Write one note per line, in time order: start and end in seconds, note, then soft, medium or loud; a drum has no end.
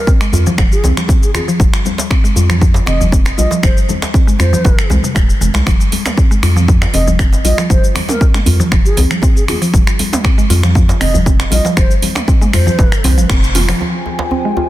0.07 0.20 C4 medium
0.07 kick loud
0.07 djembe tone medium
0.07 cabasa medium
0.21 0.28 G#3 loud
0.21 finger snap medium
0.21 cabasa medium
0.32 0.49 F2 medium
0.32 0.46 F4 medium
0.32 high conga medium
0.32 djembe tone medium
0.32 djembe bass medium
0.32 cabasa loud
0.46 0.57 F3 loud
0.46 low conga loud
0.46 cabasa medium
0.58 0.66 F1 loud
0.58 0.71 F3 loud
0.58 finger snap medium
0.58 kick loud
0.58 djembe slap loud
0.58 djembe tone loud
0.58 cabasa medium
0.72 0.86 G#4 medium
0.72 cabasa medium
0.84 0.92 C2 loud
0.84 0.96 C4 medium
0.84 djembe slap medium
0.84 djembe tone medium
0.84 low conga loud
0.84 cabasa medium
0.97 1.08 F3 medium
0.97 finger snap medium
0.97 high conga medium
0.97 cabasa medium
1.08 1.21 C4 medium
1.08 kick loud
1.08 djembe tone medium
1.08 cabasa medium
1.23 1.31 G#4 medium
1.23 cabasa medium
1.34 1.47 F4 medium
1.34 1.43 G#4 medium
1.34 finger snap medium
1.34 djembe tone medium
1.34 low conga medium
1.34 cabasa medium
1.48 1.59 F3 loud
1.48 cabasa medium
1.60 1.68 F1 loud
1.60 1.72 F3 medium
1.60 kick loud
1.60 djembe tone medium
1.60 high conga loud
1.60 cabasa medium
1.74 finger snap medium
1.74 cabasa medium
1.85 djembe tone medium
1.85 high conga loud
1.85 cabasa medium
1.98 djembe slap loud
1.98 cabasa medium
2.10 2.23 C4 medium
2.10 finger snap medium
2.10 kick loud
2.10 djembe tone medium
2.10 cabasa medium
2.24 2.31 G#3 loud
2.24 cabasa medium
2.35 2.80 F2 medium
2.35 2.49 F4 medium
2.35 djembe tone medium
2.35 high conga loud
2.35 cabasa loud
2.49 2.60 F3 loud
2.49 finger snap medium
2.49 low conga loud
2.49 cabasa medium
2.61 2.74 F3 loud
2.61 kick loud
2.61 djembe tone loud
2.61 djembe bass medium
2.61 cabasa medium
2.74 djembe slap loud
2.74 cabasa medium
2.86 3.31 F1 loud
2.86 2.99 C4 medium
2.86 3.02 D#5 medium
2.86 finger snap medium
2.86 djembe tone medium
2.86 low conga loud
2.86 cabasa medium
3.00 3.11 F3 medium
3.00 high conga medium
3.00 djembe bass medium
3.00 cabasa medium
3.12 3.25 C4 medium
3.12 kick loud
3.12 djembe tone medium
3.12 cabasa medium
3.25 finger snap medium
3.25 djembe slap medium
3.25 cabasa medium
3.38 3.46 A#1 loud
3.38 3.51 F4 medium
3.38 3.53 D#5 medium
3.38 djembe tone medium
3.38 high conga loud
3.38 cabasa loud
3.51 3.62 F3 loud
3.51 djembe slap medium
3.51 cabasa medium
3.63 3.72 F1 loud
3.63 3.75 F3 medium
3.63 3.79 C5 medium
3.63 finger snap medium
3.63 kick loud
3.63 djembe tone loud
3.63 high conga medium
3.63 cabasa medium
3.77 cabasa medium
3.89 djembe tone medium
3.89 high conga loud
3.89 low conga medium
3.89 cabasa medium
4.02 finger snap medium
4.02 djembe slap loud
4.02 cabasa medium
4.14 4.26 C4 medium
4.14 kick loud
4.14 djembe tone loud
4.14 cabasa medium
4.27 4.34 G#3 loud
4.27 cabasa medium
4.39 4.56 F2 medium
4.39 4.52 F4 medium
4.39 4.91 C5 medium
4.39 finger snap medium
4.39 djembe tone medium
4.39 high conga medium
4.39 djembe bass medium
4.39 cabasa medium
4.53 4.64 F3 loud
4.53 low conga loud
4.53 cabasa medium
4.65 4.73 F1 loud
4.65 4.78 F3 loud
4.65 kick loud
4.65 djembe slap loud
4.65 djembe tone medium
4.65 cabasa medium
4.79 finger snap medium
4.79 cabasa medium
4.90 4.99 C2 loud
4.90 5.03 G#3 loud
4.90 djembe slap medium
4.90 djembe tone medium
4.90 low conga loud
4.90 cabasa medium
5.03 5.15 C3 medium
5.03 high conga medium
5.03 cabasa medium
5.15 5.32 D#1 medium
5.15 5.28 G#3 medium
5.15 finger snap medium
5.15 kick loud
5.15 djembe tone medium
5.15 cabasa medium
5.30 cabasa medium
5.41 5.50 F1 loud
5.41 5.49 G#3 medium
5.41 djembe tone medium
5.41 low conga medium
5.41 cabasa loud
5.54 5.62 C2 loud
5.54 5.66 G#3 loud
5.54 finger snap medium
5.54 djembe slap medium
5.54 cabasa medium
5.66 5.75 F1 loud
5.66 5.79 F3 medium
5.66 finger snap medium
5.66 kick loud
5.66 high conga medium
5.66 djembe tone medium
5.66 cabasa medium
5.81 cabasa medium
5.92 open hi-hat medium
5.92 djembe tone medium
5.92 high conga medium
5.92 cabasa medium
6.06 finger snap medium
6.06 mid tom medium
6.06 djembe slap loud
6.06 cabasa medium
6.17 6.30 C4 medium
6.17 kick loud
6.17 djembe tone medium
6.17 cabasa medium
6.31 6.38 G#3 loud
6.31 cabasa medium
6.43 6.86 F2 medium
6.43 6.56 F4 medium
6.43 finger snap medium
6.43 open hi-hat medium
6.43 djembe tone medium
6.43 high conga medium
6.43 cabasa medium
6.56 6.67 F3 loud
6.56 low conga medium
6.56 cabasa medium
6.68 6.81 F3 loud
6.68 kick loud
6.68 djembe tone medium
6.68 djembe bass medium
6.68 cabasa medium
6.82 finger snap medium
6.82 djembe slap loud
6.82 cabasa medium
6.94 7.37 F1 loud
6.94 7.06 C4 medium
6.94 7.09 D#5 medium
6.94 open hi-hat medium
6.94 djembe tone loud
6.94 low conga loud
6.94 cabasa medium
7.07 7.18 F3 medium
7.07 high conga medium
7.07 djembe bass medium
7.07 cabasa medium
7.19 7.32 C4 medium
7.19 finger snap medium
7.19 kick loud
7.19 djembe tone medium
7.19 cabasa medium
7.32 djembe slap medium
7.32 cabasa medium
7.44 7.53 A#1 loud
7.44 7.58 F4 medium
7.44 7.60 D#5 medium
7.44 open hi-hat medium
7.44 high conga loud
7.44 djembe tone medium
7.44 cabasa medium
7.58 7.69 F3 loud
7.58 finger snap medium
7.58 djembe slap medium
7.58 cabasa medium
7.70 7.78 F1 loud
7.70 7.82 F3 medium
7.70 7.85 C5 medium
7.70 kick loud
7.70 high conga medium
7.70 djembe tone medium
7.70 cabasa medium
7.84 cabasa medium
7.95 finger snap medium
7.95 open hi-hat medium
7.95 djembe tone loud
7.95 high conga medium
7.95 low conga medium
7.95 cabasa soft
8.09 8.23 A#4 medium
8.09 mid tom medium
8.09 djembe slap medium
8.09 cabasa medium
8.21 8.33 C4 medium
8.21 kick loud
8.21 djembe tone medium
8.21 cabasa soft
8.34 8.41 G#3 loud
8.34 finger snap medium
8.34 mid tom medium
8.34 cabasa medium
8.46 8.62 F2 medium
8.46 8.59 F4 medium
8.46 open hi-hat medium
8.46 djembe tone medium
8.46 high conga medium
8.46 djembe bass loud
8.46 cabasa medium
8.60 8.71 F3 loud
8.60 low conga loud
8.60 cabasa medium
8.72 8.80 F1 loud
8.72 8.85 F3 loud
8.72 finger snap medium
8.72 kick loud
8.72 djembe slap medium
8.72 djembe tone medium
8.72 cabasa medium
8.85 8.99 G#4 medium
8.85 cabasa soft
8.97 9.05 C2 loud
8.97 9.09 C4 medium
8.97 open hi-hat medium
8.97 djembe slap medium
8.97 djembe tone medium
8.97 low conga loud
8.97 cabasa medium
9.10 9.22 F3 medium
9.10 finger snap medium
9.10 high conga medium
9.10 cabasa soft
9.22 9.35 C4 medium
9.22 kick loud
9.22 djembe tone medium
9.22 cabasa medium
9.36 9.44 G#4 medium
9.36 cabasa soft
9.48 9.61 F4 medium
9.48 9.57 G#4 medium
9.48 finger snap medium
9.48 mid tom medium
9.48 open hi-hat medium
9.48 djembe tone medium
9.48 low conga medium
9.48 cabasa medium
9.62 9.73 F3 loud
9.62 open hi-hat medium
9.62 cabasa medium
9.73 9.82 F1 loud
9.73 9.86 F3 medium
9.73 kick loud
9.73 high conga medium
9.73 djembe tone medium
9.73 cabasa medium
9.87 finger snap medium
9.87 cabasa medium
9.99 open hi-hat medium
9.99 djembe tone medium
9.99 high conga medium
9.99 cabasa soft
10.13 mid tom medium
10.13 djembe slap loud
10.13 cabasa medium
10.24 10.37 C4 medium
10.24 finger snap medium
10.24 kick loud
10.24 djembe tone medium
10.24 cabasa medium
10.38 10.44 G#3 loud
10.38 cabasa soft
10.50 10.93 F2 medium
10.50 10.63 F4 medium
10.50 open hi-hat medium
10.50 djembe tone medium
10.50 high conga medium
10.50 cabasa medium
10.63 10.74 F3 loud
10.63 finger snap medium
10.63 low conga medium
10.63 cabasa medium
10.75 10.88 F3 loud
10.75 kick loud
10.75 djembe tone medium
10.75 djembe bass medium
10.75 cabasa medium
10.89 djembe slap loud
10.89 cabasa medium
11.01 11.44 F1 loud
11.01 11.13 C4 medium
11.01 11.16 D#5 medium
11.01 finger snap medium
11.01 open hi-hat medium
11.01 djembe tone medium
11.01 low conga medium
11.01 cabasa medium
11.14 11.25 F3 medium
11.14 high conga medium
11.14 djembe bass loud
11.14 cabasa medium
11.26 11.38 C4 medium
11.26 kick loud
11.26 djembe tone medium
11.26 cabasa medium
11.40 finger snap medium
11.40 djembe slap medium
11.40 cabasa medium
11.51 11.60 A#1 loud
11.51 11.64 F4 medium
11.51 11.67 D#5 medium
11.51 open hi-hat medium
11.51 djembe tone medium
11.51 high conga loud
11.51 cabasa medium
11.65 11.76 F3 loud
11.65 djembe slap medium
11.65 cabasa medium
11.77 11.85 F1 loud
11.77 11.89 F3 medium
11.77 11.93 C5 medium
11.77 finger snap medium
11.77 kick loud
11.77 djembe tone medium
11.77 high conga medium
11.77 cabasa medium
11.91 cabasa medium
12.02 open hi-hat medium
12.02 djembe tone medium
12.02 high conga medium
12.02 low conga medium
12.02 cabasa soft
12.15 finger snap medium
12.15 mid tom medium
12.15 djembe slap loud
12.15 cabasa medium
12.28 12.40 C4 medium
12.28 kick loud
12.28 djembe tone medium
12.28 cabasa medium
12.41 12.48 G#3 loud
12.41 mid tom medium
12.41 cabasa soft
12.53 12.69 F2 medium
12.53 12.66 F4 medium
12.53 13.04 C5 loud
12.53 finger snap medium
12.53 open hi-hat loud
12.53 high conga medium
12.53 djembe tone medium
12.53 djembe bass loud
12.53 cabasa medium
12.66 12.78 F3 loud
12.66 low conga loud
12.66 cabasa medium
12.79 12.87 F1 loud
12.79 12.92 F3 loud
12.79 kick loud
12.79 djembe slap loud
12.79 djembe tone medium
12.79 cabasa soft
12.92 finger snap medium
12.92 cabasa medium
13.04 13.19 C2 loud
13.04 13.16 C4 medium
13.04 open hi-hat medium
13.04 djembe slap medium
13.04 djembe tone medium
13.04 low conga loud
13.04 cabasa soft
13.17 13.25 G#1 medium
13.17 13.28 F3 medium
13.17 high conga medium
13.17 cabasa medium
13.29 13.73 F1 loud
13.29 13.42 C4 medium
13.29 finger snap medium
13.29 kick loud
13.29 djembe tone medium
13.29 cabasa medium
13.43 cabasa medium
13.55 13.68 F4 medium
13.55 mid tom medium
13.55 open hi-hat medium
13.55 djembe tone medium
13.55 low conga loud
13.55 cabasa medium
13.69 13.79 F3 loud
13.69 finger snap medium
13.69 open hi-hat medium
13.69 djembe slap medium
13.69 cabasa soft
13.80 13.93 F3 medium
13.80 14.69 F4 medium
13.80 14.69 C5 medium
13.80 14.69 G5 medium
13.80 14.69 G#5 medium
13.80 djembe tone medium
14.06 djembe tone medium
14.19 djembe slap loud
14.31 14.43 C4 medium
14.31 djembe tone medium
14.45 14.51 G#3 loud
14.57 14.69 F4 medium
14.57 djembe tone medium